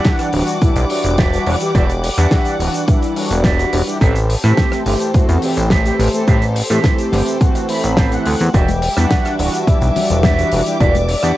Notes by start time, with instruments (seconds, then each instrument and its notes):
Already playing: analog polysynth E3 G3 D4 F#5, violin section G3 F#5 D6, clean electric guitar F#4 G4 D5 E5
0.05 kick, snare, closed hi-hat, shaker
0.19 cross-stick, closed hi-hat, shaker
0.33 analog synth bass D1, analog polysynth E3 G3 D4 F#4, open hi-hat
0.47 closed hi-hat, shaker
0.61 analog synth bass B1, analog polysynth E3 G3 D4 E4, muted clean electric guitar stroke, kick, closed hi-hat, shaker
0.76 analog synth bass B1, muted clean electric guitar stroke, closed hi-hat, shaker
0.89 analog polysynth E3 G3 D4 F#4, muted clean electric guitar stroke, open hi-hat
1.04 analog synth bass E1, closed hi-hat, shaker
1.18 clean electric guitar F#4 G4 D5 E5, kick, snare, closed hi-hat, shaker
1.32 analog polysynth E3 G3 D4 F#4, closed hi-hat, shaker
1.46 analog synth bass E1, analog polysynth E3 G3 D4 F#4, open hi-hat
1.60 analog polysynth E3 G3 D4 G4, closed hi-hat, shaker
1.74 analog synth bass E1, analog polysynth E3 G3 D4 F#4, clean electric guitar F#4 G4 D5 E5, kick, closed hi-hat, shaker
1.90 closed hi-hat, shaker
2.03 muted clean electric guitar stroke, open hi-hat
2.17 analog synth bass E2, analog polysynth E3 G3 D4 F#5, clean electric guitar F#4 G4 D5 E5, cross-stick, closed hi-hat, shaker
2.31 kick, snare, closed hi-hat, shaker
2.45 closed hi-hat, shaker
2.59 analog synth bass D1, analog polysynth E3 G3 D4 F#4, open hi-hat
2.74 closed hi-hat, shaker
2.87 analog polysynth E3 G3 D4 E4, muted clean electric guitar stroke, kick, closed hi-hat, shaker
3.02 muted clean electric guitar stroke, closed hi-hat, shaker
3.16 analog polysynth E3 G3 D4 F#4, muted clean electric guitar stroke, open hi-hat
3.31 analog synth bass E1, muted clean electric guitar stroke, closed hi-hat, shaker
3.44 clean electric guitar F#4 G4 D5 E5, kick, snare, closed hi-hat, shaker
3.58 analog polysynth E3 G3 D4 F#4, closed hi-hat, shaker
3.72 analog synth bass E1, analog polysynth E3 G3 D4 F#4, open hi-hat
3.87 analog polysynth E3 G3 D4 G4, closed hi-hat, shaker
4.01 analog synth bass A1, analog polysynth E3 A3 C4 G4, clean electric guitar G4 A4 C5 E5, violin section G4 A4 C5, kick, closed hi-hat, shaker
4.15 closed hi-hat, shaker
4.29 muted clean electric guitar stroke, open hi-hat
4.43 analog synth bass A2, analog polysynth E3 A3 C4 G4, clean electric guitar G4 A4 C5 E5, cross-stick, closed hi-hat, shaker
4.57 kick, snare, closed hi-hat, shaker
4.72 cross-stick, closed hi-hat, shaker
4.86 analog synth bass G1, analog polysynth E3 A3 C4 G4, open hi-hat
5.00 closed hi-hat, shaker
5.14 analog synth bass E2, analog polysynth E3 A3 C4 F#4, muted clean electric guitar stroke, kick, closed hi-hat, shaker
5.28 analog synth bass E2, muted clean electric guitar stroke, closed hi-hat, shaker
5.42 analog polysynth E3 A3 C4 G4, muted clean electric guitar stroke, open hi-hat
5.57 analog synth bass A1, closed hi-hat, shaker
5.70 clean electric guitar G4 A4 C5 E5, kick, snare, closed hi-hat, shaker
5.85 analog polysynth E3 A3 C4 G4, closed hi-hat, shaker
5.99 analog synth bass A1, analog polysynth E3 A3 C4 G4, open hi-hat
6.13 analog polysynth E3 A3 C4 A4, closed hi-hat, shaker
6.27 analog synth bass A1, analog polysynth E3 A3 C4 G4, clean electric guitar G4 A4 C5 E5, kick, closed hi-hat, shaker
6.42 closed hi-hat, shaker
6.55 muted clean electric guitar stroke, open hi-hat
6.70 analog synth bass A2, analog polysynth E3 A3 C4 G4, clean electric guitar G4 A4 C5 E5, cross-stick, closed hi-hat, shaker
6.84 kick, snare, closed hi-hat, shaker
6.99 closed hi-hat, shaker
7.12 analog synth bass G1, analog polysynth E3 A3 C4 G4, snare, open hi-hat
7.26 closed hi-hat, shaker
7.40 analog polysynth E3 A3 C4 F#4, muted clean electric guitar stroke, kick, closed hi-hat, shaker
7.55 muted clean electric guitar stroke, closed hi-hat, shaker
7.69 analog polysynth E3 A3 C4 B5, muted clean electric guitar stroke, open hi-hat
7.83 analog synth bass A1, closed hi-hat, shaker
7.97 clean electric guitar G4 A4 C5 E5, kick, snare, closed hi-hat, shaker
8.11 analog polysynth E3 A3 C4 F#5, closed hi-hat, shaker
8.26 analog synth bass D2, open hi-hat
8.40 analog synth bass E2, closed hi-hat, shaker
8.53 analog synth bass E1, analog polysynth E3 G3 D4 F#4, violin section G3 E5 D6, clean electric guitar F#4 G4 D5 E5, soft synth lead G5, kick, closed hi-hat, shaker
8.68 closed hi-hat, high conga, shaker
8.82 muted clean electric guitar stroke, open hi-hat, shaker
8.96 analog synth bass E2, analog polysynth E3 G3 D4 F#5, clean electric guitar F#4 G4 D5 E5, cross-stick, closed hi-hat, shaker
9.10 soft synth lead F#5, kick, snare, closed hi-hat, shaker
9.25 cross-stick, closed hi-hat, shaker
9.38 analog synth bass D1, analog polysynth E3 G3 D4 F#4, open hi-hat, shaker
9.54 closed hi-hat, shaker
9.67 analog synth bass B1, analog polysynth E3 G3 D4 E4, soft synth lead E5, muted clean electric guitar stroke, kick, closed hi-hat, shaker
9.81 analog synth bass B1, muted clean electric guitar stroke, closed hi-hat, shaker
9.95 analog polysynth E3 G3 D4 F#4, muted clean electric guitar stroke, open hi-hat, low conga, shaker
10.10 analog synth bass E1, closed hi-hat, low conga, shaker
10.23 clean electric guitar F#4 G4 D5 E5, kick, snare, closed hi-hat, high conga, shaker
10.38 analog polysynth E3 G3 D4 F#4, closed hi-hat, shaker
10.51 analog synth bass E1, analog polysynth E3 G3 D4 F#4, open hi-hat, shaker
10.66 analog polysynth E3 G3 D4 G4, closed hi-hat, shaker
10.80 analog synth bass E1, analog polysynth E3 G3 D4 F#4, clean electric guitar F#4 G4 D5 E5, soft synth lead D5, violin section E5, kick, closed hi-hat, shaker
10.95 closed hi-hat, high conga, shaker
11.08 muted clean electric guitar stroke, open hi-hat, shaker
11.23 analog synth bass E2, analog polysynth E3 G3 D4 F#5, clean electric guitar F#4 G4 D5 E5, cross-stick, closed hi-hat, shaker